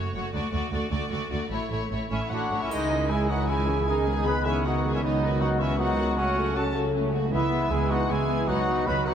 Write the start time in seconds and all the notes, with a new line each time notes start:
Already playing: A3 F#4 C#5
0.14 F#1 F#2 A3 F#4 C#5
0.33 D2 A3 F#4 D5
0.52 D2 A3 F#4 D5
0.71 D2 A3 F#4 D5
0.90 D2 A3 F#4 D5
1.10 D2 A3 F#4 D5
1.30 D2 A3 F#4 D5
1.51 A1 A2 A3 E4 C#5
1.70 A1 A2 A3 E4 C#5
1.91 A1 A2 A3 E4 C#5
2.10 A1 A2 A3 C#4 E4 C#5 E5
2.28 A1 A2 A3 F#4 C#5 F#5
2.33 D4 E4
2.50 A1 A2 A3 E4 C#5
2.62 C#4 E4 E5
2.71 C#2 D#3 E3 G#3 C#4 D#4 E4 G#4 D#5, triangle
2.91 D#3 E3 C#4 E4
3.08 D#3 G#3 D#4 E4 G#4 G#5
3.28 D#3 E3 C#4 D#4 E4 F#4 F#5
3.48 D#3 G#3 D#4 E4 G#4 G#5
3.67 D#3 E3 C#4 E4
3.85 D#3 G#3 B3 C#4 D#4 G#4 G#5
3.90 D#4
4.07 D#3 G#3 B3 G#4
4.25 D#3 G#3 B3 D#4 G#4 B4 B5
4.45 D#3 G#3 B3 C#4 E4 G#4 E5
4.64 D#3 G#3 D#4 F#4 F#5
4.84 D#3 G#3 B3 G#4
4.94 C#4 E4 E5
5.01 C#2 D#3 F#3 B3 D#4 B4 D#5
5.23 D#3 F#3 B3 F#4
5.41 D#3 F#3 C#4 D#4 F#4 F#5
5.60 D#3 F#3 B3 C#4 E4 F#4 E5
5.78 D#3 F#3 B3 D#4 F#4 F#5
5.98 D#3 F#3 B3 F#4
6.17 C#3 F#3 A3 C#4 F#4 A4 F#5
6.37 C#3 A3 F#4
6.55 F#3 C#4 F#4 A4 A5
6.74 C#3 A3 F#4
6.94 F#3 A3 C#4
7.12 C#3 A3 F#4
7.32 C#2 E3 G#3 B3 E4 B4 E5
7.50 E3 G#3 B3
7.70 C#2 E3 G#3 B3 E4 G#4 G#5
7.90 E3 G#3 B3 D#4 F#4 F#5
8.09 C#2 E3 G#3 B3 E4 G#4 G#5
8.27 E3 G#3 B3
8.47 C#2 B2 F#3 B3 D#4 F#4 F#5
8.67 F#3 B3 D#4
8.87 C#2 F#3 B3 D#4 F#4 B4 B5
9.05 F#3 B3 D#4 F#4 F#5